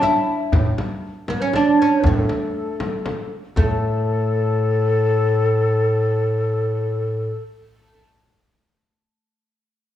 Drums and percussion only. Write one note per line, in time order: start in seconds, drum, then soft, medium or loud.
0.02 tombak tek medium
0.02 frame drum medium
0.28 tombak ka soft
0.52 tombak dum medium
0.52 frame drum medium
0.78 tombak tek medium
0.78 frame drum medium
0.91 tombak ka soft
1.28 tombak tek medium
1.28 frame drum medium
1.53 tombak tek medium
1.53 frame drum medium
1.79 tombak ka soft
2.04 frame drum medium
2.04 tombak dum medium
2.29 tombak tek medium
2.29 frame drum medium
2.42 tombak ka soft
2.55 tombak ka soft
2.80 tombak tek medium
2.80 frame drum medium
3.06 tombak tek medium
3.06 frame drum medium
3.56 frame drum medium
3.56 tombak dum medium